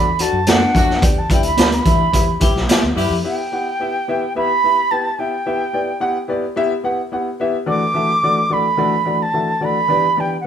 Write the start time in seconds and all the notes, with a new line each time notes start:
Already playing: E2 B5
0.19 D4 F#4 A4 D5 A5, closed hi-hat
0.33 F#2
0.47 F#3 A3 D4 F#4 A4 D5 F#5, snare, closed hi-hat
0.74 F2 F#3 A3 D4 F#4 A4 E5, kick, closed hi-hat
0.90 snare
1.01 E2 D4 G4 B4 D5 G5, kick, closed hi-hat
1.18 A5
1.30 D4 E4 G4 B4 D5 G5, kick, closed hi-hat
1.43 D2 B5, closed hi-hat
1.57 D2 B3 D4 G4 B4 D5, snare, closed hi-hat
1.72 B5, closed hi-hat
1.85 E3 D4 E4 G4 B4 E5, kick, closed hi-hat
2.12 E2 E4 G4 B4 E5, kick, closed hi-hat
2.40 E4 G4 B4 E5, muted fingered electric bass stroke, kick, closed hi-hat
2.55 B1, snare
2.68 G3 B3 E4 G4 B4 E5, snare, closed hi-hat
2.83 D2
2.96 F#2 G3 B3 E4 G4 B4 E5, open hi-hat
3.10 F2
3.24 B3 E4 G4 B4 E5 G5
3.52 B3 E4 G4 B4 F#5
3.79 B3 E4 G4 B4 E5
4.08 B3 E4 G4 B4 E5
4.35 B3 E4 G4 B4 E5 B5
4.64 B3 E4 G4 B4 E5
4.91 B3 E4 G4 B4 G5 A5
5.19 B3 E4 G4 B4 E5 G5
5.46 B3 E4 G4 B4 E5
5.73 B3 E4 G4 B4 D5
6.00 B3 E4 G4 B4 F#5
6.28 B3 E4 G4 B4 D5
6.56 B3 E4 G4 B4 E5
6.83 B3 E4 G4 B4 F#5
7.12 B3 E4 G4 B4 F#5
7.40 B3 E4 G4 B4 E5
7.66 E3 A3 D4 F#4 A4 D5 D6
7.94 E3 A3 D4 F#4 A4 E5
8.23 E3 A3 D4 F#4 A4 D5
8.50 E3 A3 D4 F#4 A4 D5 B5
8.78 E3 A3 D4 F#4 A4 D5
9.05 E3 A3 D4 F#4 A4 D5
9.22 A5
9.33 E3 A3 D4 F#4 A4 E5
9.61 E3 A3 D4 F#4 A4 D5 B5
9.88 E3 B3 D4 G4 B4 D5
10.17 E3 B3 D4 G4 B4 D5 G5
10.40 F#5